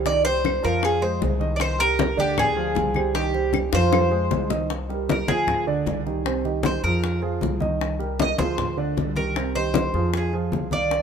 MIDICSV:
0, 0, Header, 1, 5, 480
1, 0, Start_track
1, 0, Key_signature, -3, "minor"
1, 0, Tempo, 387347
1, 74, Time_signature, 4, 2, 24, 8
1, 13657, End_track
2, 0, Start_track
2, 0, Title_t, "Cuban tres"
2, 0, Program_c, 0, 25
2, 79, Note_on_c, 0, 74, 101
2, 300, Note_off_c, 0, 74, 0
2, 307, Note_on_c, 0, 72, 104
2, 799, Note_on_c, 0, 70, 87
2, 803, Note_off_c, 0, 72, 0
2, 1042, Note_off_c, 0, 70, 0
2, 1049, Note_on_c, 0, 68, 83
2, 1266, Note_on_c, 0, 72, 77
2, 1287, Note_off_c, 0, 68, 0
2, 1491, Note_off_c, 0, 72, 0
2, 1934, Note_on_c, 0, 74, 70
2, 1989, Note_off_c, 0, 74, 0
2, 1994, Note_on_c, 0, 72, 98
2, 2231, Note_on_c, 0, 70, 111
2, 2239, Note_off_c, 0, 72, 0
2, 2718, Note_off_c, 0, 70, 0
2, 2723, Note_on_c, 0, 67, 94
2, 2940, Note_off_c, 0, 67, 0
2, 2964, Note_on_c, 0, 68, 96
2, 3896, Note_off_c, 0, 68, 0
2, 3901, Note_on_c, 0, 67, 88
2, 4351, Note_off_c, 0, 67, 0
2, 4642, Note_on_c, 0, 72, 93
2, 5547, Note_off_c, 0, 72, 0
2, 6338, Note_on_c, 0, 70, 66
2, 6547, Note_on_c, 0, 68, 84
2, 6557, Note_off_c, 0, 70, 0
2, 6995, Note_off_c, 0, 68, 0
2, 8249, Note_on_c, 0, 72, 84
2, 8467, Note_off_c, 0, 72, 0
2, 8472, Note_on_c, 0, 70, 80
2, 8919, Note_off_c, 0, 70, 0
2, 10184, Note_on_c, 0, 75, 83
2, 10389, Note_off_c, 0, 75, 0
2, 10394, Note_on_c, 0, 72, 88
2, 10841, Note_off_c, 0, 72, 0
2, 11356, Note_on_c, 0, 70, 77
2, 11802, Note_off_c, 0, 70, 0
2, 11840, Note_on_c, 0, 72, 93
2, 12508, Note_off_c, 0, 72, 0
2, 12605, Note_on_c, 0, 68, 54
2, 12814, Note_off_c, 0, 68, 0
2, 13293, Note_on_c, 0, 74, 90
2, 13657, Note_off_c, 0, 74, 0
2, 13657, End_track
3, 0, Start_track
3, 0, Title_t, "Grand piano"
3, 0, Program_c, 1, 0
3, 65, Note_on_c, 1, 51, 81
3, 75, Note_on_c, 1, 63, 70
3, 75, Note_on_c, 1, 75, 80
3, 265, Note_off_c, 1, 51, 0
3, 271, Note_off_c, 1, 63, 0
3, 271, Note_off_c, 1, 75, 0
3, 313, Note_on_c, 1, 55, 70
3, 316, Note_on_c, 1, 67, 72
3, 321, Note_on_c, 1, 72, 74
3, 706, Note_off_c, 1, 55, 0
3, 708, Note_off_c, 1, 67, 0
3, 711, Note_off_c, 1, 72, 0
3, 787, Note_on_c, 1, 53, 93
3, 789, Note_on_c, 1, 65, 89
3, 796, Note_on_c, 1, 77, 91
3, 1182, Note_off_c, 1, 53, 0
3, 1184, Note_off_c, 1, 65, 0
3, 1188, Note_off_c, 1, 77, 0
3, 1260, Note_on_c, 1, 56, 72
3, 1264, Note_on_c, 1, 68, 80
3, 1268, Note_on_c, 1, 72, 85
3, 1461, Note_off_c, 1, 56, 0
3, 1463, Note_off_c, 1, 68, 0
3, 1466, Note_off_c, 1, 72, 0
3, 1501, Note_on_c, 1, 56, 65
3, 1503, Note_on_c, 1, 68, 66
3, 1508, Note_on_c, 1, 72, 67
3, 1702, Note_off_c, 1, 56, 0
3, 1703, Note_off_c, 1, 68, 0
3, 1706, Note_off_c, 1, 72, 0
3, 1731, Note_on_c, 1, 51, 81
3, 1736, Note_on_c, 1, 63, 78
3, 1744, Note_on_c, 1, 75, 85
3, 2132, Note_off_c, 1, 51, 0
3, 2135, Note_off_c, 1, 63, 0
3, 2140, Note_off_c, 1, 75, 0
3, 2211, Note_on_c, 1, 55, 65
3, 2212, Note_on_c, 1, 67, 70
3, 2216, Note_on_c, 1, 70, 75
3, 2613, Note_off_c, 1, 55, 0
3, 2613, Note_off_c, 1, 67, 0
3, 2615, Note_off_c, 1, 70, 0
3, 2692, Note_on_c, 1, 50, 82
3, 2696, Note_on_c, 1, 62, 94
3, 2699, Note_on_c, 1, 74, 94
3, 3093, Note_off_c, 1, 50, 0
3, 3095, Note_off_c, 1, 62, 0
3, 3097, Note_off_c, 1, 74, 0
3, 3172, Note_on_c, 1, 53, 80
3, 3179, Note_on_c, 1, 65, 84
3, 3184, Note_on_c, 1, 68, 78
3, 3573, Note_off_c, 1, 53, 0
3, 3577, Note_off_c, 1, 65, 0
3, 3580, Note_off_c, 1, 68, 0
3, 3660, Note_on_c, 1, 55, 67
3, 3661, Note_on_c, 1, 67, 72
3, 3669, Note_on_c, 1, 72, 64
3, 3860, Note_off_c, 1, 55, 0
3, 3861, Note_off_c, 1, 67, 0
3, 3866, Note_off_c, 1, 72, 0
3, 3896, Note_on_c, 1, 51, 77
3, 3902, Note_on_c, 1, 63, 76
3, 3906, Note_on_c, 1, 75, 75
3, 4099, Note_off_c, 1, 51, 0
3, 4102, Note_off_c, 1, 63, 0
3, 4104, Note_off_c, 1, 75, 0
3, 4135, Note_on_c, 1, 55, 74
3, 4139, Note_on_c, 1, 67, 70
3, 4139, Note_on_c, 1, 72, 65
3, 4535, Note_off_c, 1, 55, 0
3, 4537, Note_off_c, 1, 67, 0
3, 4537, Note_off_c, 1, 72, 0
3, 4611, Note_on_c, 1, 53, 86
3, 4618, Note_on_c, 1, 77, 92
3, 4619, Note_on_c, 1, 65, 86
3, 5012, Note_off_c, 1, 53, 0
3, 5017, Note_off_c, 1, 65, 0
3, 5017, Note_off_c, 1, 77, 0
3, 5093, Note_on_c, 1, 56, 79
3, 5096, Note_on_c, 1, 68, 81
3, 5100, Note_on_c, 1, 72, 82
3, 5297, Note_off_c, 1, 56, 0
3, 5299, Note_off_c, 1, 68, 0
3, 5301, Note_off_c, 1, 72, 0
3, 5344, Note_on_c, 1, 56, 68
3, 5346, Note_on_c, 1, 72, 67
3, 5347, Note_on_c, 1, 68, 64
3, 5544, Note_off_c, 1, 56, 0
3, 5545, Note_off_c, 1, 68, 0
3, 5545, Note_off_c, 1, 72, 0
3, 5578, Note_on_c, 1, 51, 75
3, 5581, Note_on_c, 1, 63, 76
3, 5584, Note_on_c, 1, 75, 76
3, 5780, Note_off_c, 1, 51, 0
3, 5782, Note_off_c, 1, 63, 0
3, 5784, Note_off_c, 1, 75, 0
3, 6062, Note_on_c, 1, 55, 68
3, 6065, Note_on_c, 1, 67, 68
3, 6070, Note_on_c, 1, 70, 65
3, 6459, Note_off_c, 1, 55, 0
3, 6461, Note_off_c, 1, 67, 0
3, 6464, Note_off_c, 1, 70, 0
3, 6543, Note_on_c, 1, 53, 71
3, 6544, Note_on_c, 1, 65, 69
3, 6553, Note_on_c, 1, 68, 76
3, 6940, Note_off_c, 1, 53, 0
3, 6941, Note_off_c, 1, 65, 0
3, 6946, Note_off_c, 1, 68, 0
3, 7027, Note_on_c, 1, 50, 91
3, 7033, Note_on_c, 1, 62, 83
3, 7037, Note_on_c, 1, 74, 91
3, 7423, Note_off_c, 1, 50, 0
3, 7426, Note_off_c, 1, 62, 0
3, 7428, Note_off_c, 1, 74, 0
3, 7510, Note_on_c, 1, 51, 64
3, 7513, Note_on_c, 1, 63, 67
3, 7517, Note_on_c, 1, 67, 62
3, 7708, Note_off_c, 1, 51, 0
3, 7709, Note_off_c, 1, 63, 0
3, 7712, Note_off_c, 1, 67, 0
3, 7749, Note_on_c, 1, 48, 75
3, 7753, Note_on_c, 1, 60, 75
3, 7759, Note_on_c, 1, 72, 75
3, 7947, Note_off_c, 1, 48, 0
3, 7949, Note_off_c, 1, 60, 0
3, 7953, Note_off_c, 1, 72, 0
3, 7989, Note_on_c, 1, 51, 69
3, 7996, Note_on_c, 1, 63, 69
3, 7997, Note_on_c, 1, 67, 69
3, 8384, Note_off_c, 1, 51, 0
3, 8388, Note_off_c, 1, 63, 0
3, 8389, Note_off_c, 1, 67, 0
3, 8475, Note_on_c, 1, 53, 73
3, 8476, Note_on_c, 1, 65, 74
3, 8480, Note_on_c, 1, 68, 72
3, 8867, Note_off_c, 1, 53, 0
3, 8868, Note_off_c, 1, 65, 0
3, 8871, Note_off_c, 1, 68, 0
3, 8939, Note_on_c, 1, 53, 77
3, 8946, Note_on_c, 1, 65, 81
3, 8950, Note_on_c, 1, 68, 81
3, 9338, Note_off_c, 1, 53, 0
3, 9343, Note_off_c, 1, 65, 0
3, 9345, Note_off_c, 1, 68, 0
3, 9422, Note_on_c, 1, 51, 78
3, 9426, Note_on_c, 1, 63, 73
3, 9433, Note_on_c, 1, 75, 80
3, 9821, Note_off_c, 1, 51, 0
3, 9823, Note_off_c, 1, 63, 0
3, 9827, Note_off_c, 1, 75, 0
3, 9903, Note_on_c, 1, 55, 73
3, 9905, Note_on_c, 1, 67, 76
3, 9909, Note_on_c, 1, 70, 69
3, 10301, Note_off_c, 1, 55, 0
3, 10303, Note_off_c, 1, 67, 0
3, 10304, Note_off_c, 1, 70, 0
3, 10384, Note_on_c, 1, 53, 73
3, 10386, Note_on_c, 1, 65, 70
3, 10391, Note_on_c, 1, 68, 76
3, 10782, Note_off_c, 1, 53, 0
3, 10783, Note_off_c, 1, 65, 0
3, 10786, Note_off_c, 1, 68, 0
3, 10873, Note_on_c, 1, 50, 86
3, 10877, Note_on_c, 1, 62, 89
3, 10881, Note_on_c, 1, 74, 89
3, 11267, Note_off_c, 1, 50, 0
3, 11270, Note_off_c, 1, 62, 0
3, 11272, Note_off_c, 1, 74, 0
3, 11362, Note_on_c, 1, 51, 70
3, 11363, Note_on_c, 1, 63, 62
3, 11368, Note_on_c, 1, 67, 64
3, 11556, Note_off_c, 1, 51, 0
3, 11557, Note_off_c, 1, 63, 0
3, 11559, Note_off_c, 1, 67, 0
3, 11601, Note_on_c, 1, 48, 68
3, 11603, Note_on_c, 1, 60, 75
3, 11606, Note_on_c, 1, 72, 75
3, 11795, Note_off_c, 1, 48, 0
3, 11796, Note_off_c, 1, 60, 0
3, 11798, Note_off_c, 1, 72, 0
3, 11840, Note_on_c, 1, 51, 72
3, 11844, Note_on_c, 1, 63, 68
3, 11850, Note_on_c, 1, 67, 72
3, 12232, Note_off_c, 1, 51, 0
3, 12234, Note_off_c, 1, 63, 0
3, 12238, Note_off_c, 1, 67, 0
3, 12322, Note_on_c, 1, 53, 77
3, 12323, Note_on_c, 1, 65, 74
3, 12326, Note_on_c, 1, 68, 78
3, 12713, Note_off_c, 1, 53, 0
3, 12714, Note_off_c, 1, 65, 0
3, 12716, Note_off_c, 1, 68, 0
3, 12798, Note_on_c, 1, 53, 78
3, 12805, Note_on_c, 1, 65, 75
3, 12809, Note_on_c, 1, 68, 75
3, 13191, Note_off_c, 1, 53, 0
3, 13195, Note_off_c, 1, 65, 0
3, 13198, Note_off_c, 1, 68, 0
3, 13280, Note_on_c, 1, 51, 72
3, 13281, Note_on_c, 1, 63, 74
3, 13286, Note_on_c, 1, 77, 72
3, 13657, Note_off_c, 1, 51, 0
3, 13657, Note_off_c, 1, 63, 0
3, 13657, Note_off_c, 1, 77, 0
3, 13657, End_track
4, 0, Start_track
4, 0, Title_t, "Upright bass"
4, 0, Program_c, 2, 32
4, 0, Note_on_c, 2, 36, 88
4, 721, Note_off_c, 2, 36, 0
4, 795, Note_on_c, 2, 41, 85
4, 1463, Note_off_c, 2, 41, 0
4, 1514, Note_on_c, 2, 36, 91
4, 2638, Note_off_c, 2, 36, 0
4, 2697, Note_on_c, 2, 38, 80
4, 3374, Note_off_c, 2, 38, 0
4, 3414, Note_on_c, 2, 36, 95
4, 4548, Note_off_c, 2, 36, 0
4, 4616, Note_on_c, 2, 41, 90
4, 5294, Note_off_c, 2, 41, 0
4, 5343, Note_on_c, 2, 36, 86
4, 6474, Note_off_c, 2, 36, 0
4, 6546, Note_on_c, 2, 38, 81
4, 7220, Note_off_c, 2, 38, 0
4, 7264, Note_on_c, 2, 36, 92
4, 8395, Note_off_c, 2, 36, 0
4, 8466, Note_on_c, 2, 41, 83
4, 9140, Note_off_c, 2, 41, 0
4, 9195, Note_on_c, 2, 36, 90
4, 10321, Note_off_c, 2, 36, 0
4, 10390, Note_on_c, 2, 38, 90
4, 11063, Note_off_c, 2, 38, 0
4, 11115, Note_on_c, 2, 36, 89
4, 12242, Note_off_c, 2, 36, 0
4, 12312, Note_on_c, 2, 41, 80
4, 12985, Note_off_c, 2, 41, 0
4, 13037, Note_on_c, 2, 36, 83
4, 13657, Note_off_c, 2, 36, 0
4, 13657, End_track
5, 0, Start_track
5, 0, Title_t, "Drums"
5, 71, Note_on_c, 9, 60, 67
5, 75, Note_on_c, 9, 63, 34
5, 195, Note_off_c, 9, 60, 0
5, 199, Note_off_c, 9, 63, 0
5, 308, Note_on_c, 9, 63, 34
5, 312, Note_on_c, 9, 60, 35
5, 432, Note_off_c, 9, 63, 0
5, 436, Note_off_c, 9, 60, 0
5, 551, Note_on_c, 9, 63, 63
5, 556, Note_on_c, 9, 60, 56
5, 569, Note_on_c, 9, 75, 59
5, 675, Note_off_c, 9, 63, 0
5, 680, Note_off_c, 9, 60, 0
5, 693, Note_off_c, 9, 75, 0
5, 789, Note_on_c, 9, 60, 31
5, 793, Note_on_c, 9, 63, 36
5, 913, Note_off_c, 9, 60, 0
5, 917, Note_off_c, 9, 63, 0
5, 1024, Note_on_c, 9, 63, 34
5, 1028, Note_on_c, 9, 60, 68
5, 1043, Note_on_c, 9, 75, 62
5, 1148, Note_off_c, 9, 63, 0
5, 1152, Note_off_c, 9, 60, 0
5, 1167, Note_off_c, 9, 75, 0
5, 1267, Note_on_c, 9, 63, 34
5, 1391, Note_off_c, 9, 63, 0
5, 1510, Note_on_c, 9, 60, 31
5, 1510, Note_on_c, 9, 61, 76
5, 1513, Note_on_c, 9, 63, 77
5, 1634, Note_off_c, 9, 60, 0
5, 1634, Note_off_c, 9, 61, 0
5, 1636, Note_off_c, 9, 63, 0
5, 1746, Note_on_c, 9, 60, 35
5, 1870, Note_off_c, 9, 60, 0
5, 1982, Note_on_c, 9, 60, 65
5, 1994, Note_on_c, 9, 63, 37
5, 1998, Note_on_c, 9, 75, 66
5, 2106, Note_off_c, 9, 60, 0
5, 2118, Note_off_c, 9, 63, 0
5, 2122, Note_off_c, 9, 75, 0
5, 2226, Note_on_c, 9, 63, 32
5, 2227, Note_on_c, 9, 60, 35
5, 2350, Note_off_c, 9, 63, 0
5, 2351, Note_off_c, 9, 60, 0
5, 2467, Note_on_c, 9, 60, 57
5, 2472, Note_on_c, 9, 63, 108
5, 2591, Note_off_c, 9, 60, 0
5, 2596, Note_off_c, 9, 63, 0
5, 2711, Note_on_c, 9, 63, 35
5, 2713, Note_on_c, 9, 60, 30
5, 2835, Note_off_c, 9, 63, 0
5, 2837, Note_off_c, 9, 60, 0
5, 2945, Note_on_c, 9, 63, 31
5, 2945, Note_on_c, 9, 64, 81
5, 2947, Note_on_c, 9, 60, 69
5, 2952, Note_on_c, 9, 75, 65
5, 3069, Note_off_c, 9, 63, 0
5, 3069, Note_off_c, 9, 64, 0
5, 3071, Note_off_c, 9, 60, 0
5, 3076, Note_off_c, 9, 75, 0
5, 3179, Note_on_c, 9, 63, 37
5, 3303, Note_off_c, 9, 63, 0
5, 3409, Note_on_c, 9, 63, 77
5, 3424, Note_on_c, 9, 60, 31
5, 3424, Note_on_c, 9, 61, 78
5, 3533, Note_off_c, 9, 63, 0
5, 3548, Note_off_c, 9, 60, 0
5, 3548, Note_off_c, 9, 61, 0
5, 3648, Note_on_c, 9, 63, 70
5, 3668, Note_on_c, 9, 75, 59
5, 3671, Note_on_c, 9, 60, 35
5, 3772, Note_off_c, 9, 63, 0
5, 3791, Note_off_c, 9, 75, 0
5, 3794, Note_off_c, 9, 60, 0
5, 3903, Note_on_c, 9, 60, 65
5, 4027, Note_off_c, 9, 60, 0
5, 4135, Note_on_c, 9, 63, 35
5, 4144, Note_on_c, 9, 60, 35
5, 4259, Note_off_c, 9, 63, 0
5, 4268, Note_off_c, 9, 60, 0
5, 4371, Note_on_c, 9, 63, 67
5, 4379, Note_on_c, 9, 60, 53
5, 4392, Note_on_c, 9, 75, 58
5, 4495, Note_off_c, 9, 63, 0
5, 4503, Note_off_c, 9, 60, 0
5, 4516, Note_off_c, 9, 75, 0
5, 4617, Note_on_c, 9, 60, 81
5, 4618, Note_on_c, 9, 63, 39
5, 4741, Note_off_c, 9, 60, 0
5, 4742, Note_off_c, 9, 63, 0
5, 4863, Note_on_c, 9, 60, 91
5, 4863, Note_on_c, 9, 63, 34
5, 4875, Note_on_c, 9, 75, 64
5, 4987, Note_off_c, 9, 60, 0
5, 4987, Note_off_c, 9, 63, 0
5, 4999, Note_off_c, 9, 75, 0
5, 5100, Note_on_c, 9, 63, 37
5, 5224, Note_off_c, 9, 63, 0
5, 5341, Note_on_c, 9, 61, 92
5, 5342, Note_on_c, 9, 63, 73
5, 5465, Note_off_c, 9, 61, 0
5, 5466, Note_off_c, 9, 63, 0
5, 5580, Note_on_c, 9, 61, 69
5, 5704, Note_off_c, 9, 61, 0
5, 5825, Note_on_c, 9, 63, 32
5, 5827, Note_on_c, 9, 60, 65
5, 5949, Note_off_c, 9, 63, 0
5, 5951, Note_off_c, 9, 60, 0
5, 6066, Note_on_c, 9, 63, 30
5, 6075, Note_on_c, 9, 60, 35
5, 6190, Note_off_c, 9, 63, 0
5, 6199, Note_off_c, 9, 60, 0
5, 6312, Note_on_c, 9, 63, 98
5, 6319, Note_on_c, 9, 60, 55
5, 6436, Note_off_c, 9, 63, 0
5, 6443, Note_off_c, 9, 60, 0
5, 6545, Note_on_c, 9, 63, 102
5, 6552, Note_on_c, 9, 60, 29
5, 6669, Note_off_c, 9, 63, 0
5, 6675, Note_off_c, 9, 60, 0
5, 6782, Note_on_c, 9, 63, 31
5, 6782, Note_on_c, 9, 64, 77
5, 6789, Note_on_c, 9, 60, 61
5, 6906, Note_off_c, 9, 63, 0
5, 6906, Note_off_c, 9, 64, 0
5, 6913, Note_off_c, 9, 60, 0
5, 7033, Note_on_c, 9, 63, 35
5, 7156, Note_off_c, 9, 63, 0
5, 7267, Note_on_c, 9, 63, 79
5, 7275, Note_on_c, 9, 60, 34
5, 7275, Note_on_c, 9, 61, 78
5, 7391, Note_off_c, 9, 63, 0
5, 7399, Note_off_c, 9, 60, 0
5, 7399, Note_off_c, 9, 61, 0
5, 7517, Note_on_c, 9, 60, 33
5, 7641, Note_off_c, 9, 60, 0
5, 7749, Note_on_c, 9, 63, 37
5, 7756, Note_on_c, 9, 60, 71
5, 7873, Note_off_c, 9, 63, 0
5, 7880, Note_off_c, 9, 60, 0
5, 7989, Note_on_c, 9, 63, 35
5, 7994, Note_on_c, 9, 60, 33
5, 8113, Note_off_c, 9, 63, 0
5, 8118, Note_off_c, 9, 60, 0
5, 8218, Note_on_c, 9, 63, 101
5, 8240, Note_on_c, 9, 60, 54
5, 8342, Note_off_c, 9, 63, 0
5, 8364, Note_off_c, 9, 60, 0
5, 8476, Note_on_c, 9, 60, 30
5, 8600, Note_off_c, 9, 60, 0
5, 8703, Note_on_c, 9, 63, 30
5, 8719, Note_on_c, 9, 60, 58
5, 8827, Note_off_c, 9, 63, 0
5, 8843, Note_off_c, 9, 60, 0
5, 8946, Note_on_c, 9, 63, 33
5, 9070, Note_off_c, 9, 63, 0
5, 9184, Note_on_c, 9, 63, 77
5, 9208, Note_on_c, 9, 60, 31
5, 9208, Note_on_c, 9, 61, 79
5, 9308, Note_off_c, 9, 63, 0
5, 9332, Note_off_c, 9, 60, 0
5, 9332, Note_off_c, 9, 61, 0
5, 9423, Note_on_c, 9, 63, 77
5, 9441, Note_on_c, 9, 60, 33
5, 9547, Note_off_c, 9, 63, 0
5, 9565, Note_off_c, 9, 60, 0
5, 9670, Note_on_c, 9, 63, 34
5, 9683, Note_on_c, 9, 60, 65
5, 9794, Note_off_c, 9, 63, 0
5, 9807, Note_off_c, 9, 60, 0
5, 9915, Note_on_c, 9, 63, 32
5, 9919, Note_on_c, 9, 60, 34
5, 10039, Note_off_c, 9, 63, 0
5, 10043, Note_off_c, 9, 60, 0
5, 10156, Note_on_c, 9, 63, 106
5, 10162, Note_on_c, 9, 60, 58
5, 10280, Note_off_c, 9, 63, 0
5, 10286, Note_off_c, 9, 60, 0
5, 10390, Note_on_c, 9, 63, 96
5, 10399, Note_on_c, 9, 60, 29
5, 10514, Note_off_c, 9, 63, 0
5, 10523, Note_off_c, 9, 60, 0
5, 10634, Note_on_c, 9, 60, 63
5, 10640, Note_on_c, 9, 63, 35
5, 10640, Note_on_c, 9, 64, 80
5, 10758, Note_off_c, 9, 60, 0
5, 10763, Note_off_c, 9, 63, 0
5, 10763, Note_off_c, 9, 64, 0
5, 10875, Note_on_c, 9, 63, 32
5, 10999, Note_off_c, 9, 63, 0
5, 11121, Note_on_c, 9, 63, 79
5, 11122, Note_on_c, 9, 60, 31
5, 11122, Note_on_c, 9, 61, 69
5, 11245, Note_off_c, 9, 63, 0
5, 11246, Note_off_c, 9, 60, 0
5, 11246, Note_off_c, 9, 61, 0
5, 11346, Note_on_c, 9, 63, 68
5, 11365, Note_on_c, 9, 60, 35
5, 11470, Note_off_c, 9, 63, 0
5, 11489, Note_off_c, 9, 60, 0
5, 11601, Note_on_c, 9, 60, 71
5, 11607, Note_on_c, 9, 63, 34
5, 11725, Note_off_c, 9, 60, 0
5, 11731, Note_off_c, 9, 63, 0
5, 11844, Note_on_c, 9, 63, 31
5, 11845, Note_on_c, 9, 60, 30
5, 11968, Note_off_c, 9, 63, 0
5, 11969, Note_off_c, 9, 60, 0
5, 12069, Note_on_c, 9, 63, 100
5, 12086, Note_on_c, 9, 60, 62
5, 12193, Note_off_c, 9, 63, 0
5, 12210, Note_off_c, 9, 60, 0
5, 12318, Note_on_c, 9, 60, 30
5, 12441, Note_off_c, 9, 60, 0
5, 12557, Note_on_c, 9, 63, 31
5, 12560, Note_on_c, 9, 60, 64
5, 12681, Note_off_c, 9, 63, 0
5, 12684, Note_off_c, 9, 60, 0
5, 12800, Note_on_c, 9, 63, 35
5, 12924, Note_off_c, 9, 63, 0
5, 13036, Note_on_c, 9, 63, 76
5, 13052, Note_on_c, 9, 60, 33
5, 13052, Note_on_c, 9, 61, 72
5, 13160, Note_off_c, 9, 63, 0
5, 13176, Note_off_c, 9, 60, 0
5, 13176, Note_off_c, 9, 61, 0
5, 13272, Note_on_c, 9, 63, 67
5, 13285, Note_on_c, 9, 60, 37
5, 13396, Note_off_c, 9, 63, 0
5, 13409, Note_off_c, 9, 60, 0
5, 13519, Note_on_c, 9, 63, 31
5, 13524, Note_on_c, 9, 60, 69
5, 13643, Note_off_c, 9, 63, 0
5, 13648, Note_off_c, 9, 60, 0
5, 13657, End_track
0, 0, End_of_file